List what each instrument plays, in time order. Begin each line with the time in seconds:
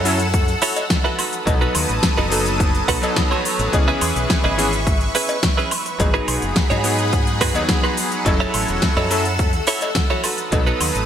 Already playing: fingered electric bass F#2, clean electric guitar E4 F#4 A4 C#5, analog synth pad A4 F#5 E6
0.04 electric grand piano F#3 C#4 E4 A4, open hi-hat, shaker
0.19 closed hi-hat, shaker
0.34 kick, closed hi-hat, shaker
0.48 closed hi-hat, shaker
0.62 clean electric guitar E4 F#4 A4 C#5, open hi-hat, shaker
0.76 closed hi-hat, cowbell, shaker
0.90 kick, snare, closed hi-hat, shaker
1.04 clean electric guitar E4 F#4 A4 B4, shaker
1.18 clean electric guitar D#4 F#4 A4 B4, analog synth pad B4 A5 D#6, open hi-hat, high woodblock, shaker
1.33 closed hi-hat, shaker
1.45 fingered electric bass B1, electric grand piano F#3 B3 D#4 A4, kick, closed hi-hat, cowbell, shaker
1.61 clean electric guitar D#4 F#4 A4 B4, shaker
1.75 fingered electric bass D#2, open hi-hat, high woodblock, shaker
1.89 fingered electric bass A1, closed hi-hat, shaker
2.03 kick, snare, closed hi-hat, shaker
2.17 fingered electric bass F#1, clean electric guitar D#4 F#4 A4 B4, cowbell, shaker
2.30 electric grand piano F#3 B3 D#4 A4, open hi-hat, shaker
2.46 closed hi-hat, shaker
2.60 kick, closed hi-hat, shaker
2.75 closed hi-hat, shaker
2.88 fingered electric bass B1, clean electric guitar D#4 F#4 A4 B4 F#5, kick, open hi-hat, high woodblock, shaker
3.02 electric grand piano F#3 B3 D#4 A4, closed hi-hat, cowbell, shaker
3.16 clean electric guitar D#5, kick, snare, closed hi-hat, shaker
3.31 clean electric guitar D#4 F#4 A4 C#5, high woodblock, shaker
3.45 clean electric guitar C#5, open hi-hat, shaker
3.59 fingered electric bass A1, muted clean electric guitar stroke, closed hi-hat, shaker
3.72 fingered electric bass C#2, electric grand piano E3 B3 C#4 G#4, analog synth pad E5 C#6, kick, closed hi-hat, cowbell, shaker
3.88 clean electric guitar C#4 E4 G#4 B4, shaker
4.01 fingered electric bass E2, open hi-hat, high woodblock, shaker
4.16 fingered electric bass B1, closed hi-hat, shaker
4.30 kick, snare, closed hi-hat, shaker
4.44 fingered electric bass G#1, clean electric guitar C#4 E4 G#4 B4, cowbell, shaker
4.58 electric grand piano E3 B3 C#4 G#4, open hi-hat, shaker
4.73 closed hi-hat, shaker
4.87 kick, closed hi-hat, shaker
5.01 closed hi-hat, shaker
5.15 clean electric guitar C#4 E4 G#4 B4, open hi-hat, shaker
5.29 closed hi-hat, cowbell, shaker
5.43 kick, snare, closed hi-hat, shaker
5.57 clean electric guitar C#4 E4 G#4 B4, shaker
5.71 open hi-hat, high woodblock, shaker
5.86 muted clean electric guitar stroke, closed hi-hat, shaker
5.98 fingered electric bass G#1, electric grand piano F#3 B3 D#4 G#4, analog synth pad G#4 F#5 B5, kick, closed hi-hat, cowbell, shaker
6.14 clean electric guitar D#4 F#4 G#4 B4, shaker
6.28 fingered electric bass B1, open hi-hat, high woodblock, shaker
6.42 fingered electric bass F#1, closed hi-hat, shaker
6.56 kick, snare, closed hi-hat, shaker
6.70 fingered electric bass G#2, clean electric guitar D#4 F#4 G#4 C#5, closed hi-hat, cowbell, shaker
6.83 electric grand piano F#3 B3 D#4 G#4, open hi-hat, shaker
6.98 closed hi-hat, shaker
7.13 kick, closed hi-hat, shaker
7.27 closed hi-hat, shaker
7.41 clean electric guitar D#4 F#4 G#4 B4, kick, open hi-hat, high woodblock, shaker
7.54 fingered electric bass D#2, electric grand piano F#3 B3 D#4 G#4, closed hi-hat, cowbell, shaker
7.69 kick, snare, closed hi-hat, shaker
7.83 clean electric guitar D#4 F#4 G#4 B4, high woodblock, shaker
7.97 open hi-hat, shaker
8.12 muted clean electric guitar stroke, closed hi-hat, shaker
8.25 fingered electric bass F#1, electric grand piano F#3 C#4 E4 A4, analog synth pad A4 E6, kick, closed hi-hat, cowbell, shaker
8.40 clean electric guitar E4 F#4 A4 C#5, shaker
8.54 fingered electric bass A1, open hi-hat, high woodblock, shaker
8.68 fingered electric bass E1, closed hi-hat, shaker
8.82 kick, snare, closed hi-hat, shaker
8.97 fingered electric bass F#2, clean electric guitar E4 F#4 A4 C#5, cowbell, shaker
9.10 electric grand piano F#3 C#4 E4 A4, open hi-hat, shaker
9.25 closed hi-hat, shaker
9.39 kick, closed hi-hat, shaker
9.53 closed hi-hat, shaker
9.67 clean electric guitar E4 F#4 A4 C#5, open hi-hat, shaker
9.81 closed hi-hat, cowbell, shaker
9.95 kick, snare, closed hi-hat, shaker
10.10 clean electric guitar E4 F#4 A4 C#5, shaker
10.24 clean electric guitar D#4 F#4 A4 B4, analog synth pad B4 A5 D#6, open hi-hat, high woodblock, shaker
10.38 closed hi-hat, shaker
10.51 fingered electric bass B1, electric grand piano F#3 B3 D#4 A4, kick, closed hi-hat, cowbell, shaker
10.66 clean electric guitar D#4 F#4 A4 B4, shaker
10.81 fingered electric bass D#2, open hi-hat, high woodblock, shaker
10.95 fingered electric bass A1, closed hi-hat, shaker